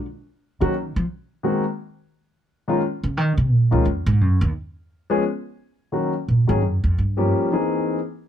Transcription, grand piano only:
X:1
M:4/4
L:1/8
Q:"Swing" 1/4=174
K:Gblyd
V:1 name="Grand piano"
z3 [E,G,B,DG] z4 | [E,A,B,CG] z6 [E,A,B,DF] | z4 z [E,A,B,DF] z2 | z4 z [F,A,_CDA] z2 |
z2 [E,G,B,DG] z2 [E,G,B,DA] z2 | z [F,=G,B,D=G]2 [_F,B,CEA]3 z2 |]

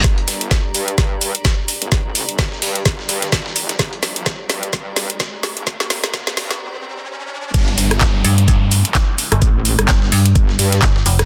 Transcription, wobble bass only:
X:1
M:4/4
L:1/16
Q:"Swing 16ths" 1/4=128
K:Gm
V:1 name="Wobble bass" clef=bass
G,,,2 G,,,4 G,,2 G,,3 z4 G,,, | A,,,3 G,,,3 G,,2 G,,,2 G,,2 G,,,2 F,,,2 | G,,,2 G,,,4 G,,2 G,,3 z4 G,,, | A,,,3 G,,,3 G,,2 z8 |
G,,,2 G,,,4 z8 z2 | A,,,3 G,,,3 z2 G,,,2 G,,2 z4 |]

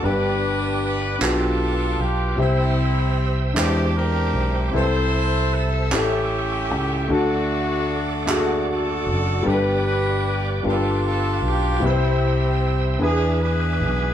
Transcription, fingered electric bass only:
X:1
M:6/8
L:1/8
Q:3/8=51
K:G
V:1 name="Fingered electric bass" clef=bass
G,,,3 B,,,2 B,,, | C,,3 E,,2 B,,, | C,,3 A,,,2 ^C,, | D,,4- D,, F,,, |
G,,,3 G,,,2 B,,, | C,,3 E,,2 B,,, |]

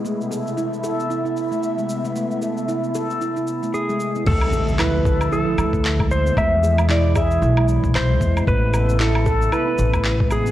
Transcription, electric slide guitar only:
X:1
M:4/4
L:1/8
Q:"Swing 16ths" 1/4=114
K:Am
V:1 name="Electric slide guitar"
z8 | z6 ^G2 | A2 B2 A3 c | e2 d e2 z c2 |
B2 A2 B3 ^G |]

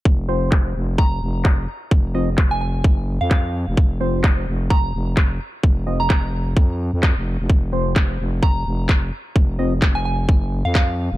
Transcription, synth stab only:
X:1
M:4/4
L:1/8
Q:"Swing 16ths" 1/4=129
K:Fphr
V:1 name="Synth stab"
z [F,Cc] z6 | z [F,Ce] z6 | z [F,Cc] z6 | z [F,Ce] z6 |
z [F,Cc] z6 | z [F,Ce] z6 |]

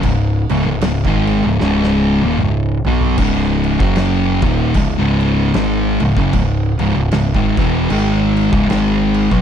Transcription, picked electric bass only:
X:1
M:4/4
L:1/16
Q:"Swing" 1/4=76
K:C#m
V:1 name="Picked electric bass" clef=bass
C,,,2 C,,, C,,, C,,, G,,,2 C,,, C,,,3 D,,, C,,,2 B,,,2 | C,,,3 F,,,3 D,,,2 C,,, C,,,3 G,,,2 C,,, F,,, | C,,,2 C,,, C,,, C,,, G,,, E,,,2 G,,,3 C,,, G,,,3 B,,, |]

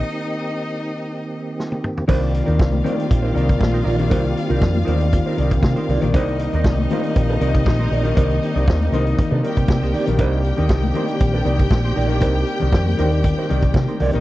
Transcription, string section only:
X:1
M:4/4
L:1/8
Q:1/4=118
K:Cm
V:1 name="String section"
[Ee]6- [Ee] z | [Ff]8- | [Ff]8 | [Ee]8- |
[Ee]4- [Ee] [Gg]3 | [Gg]8- | [Gg]8 |]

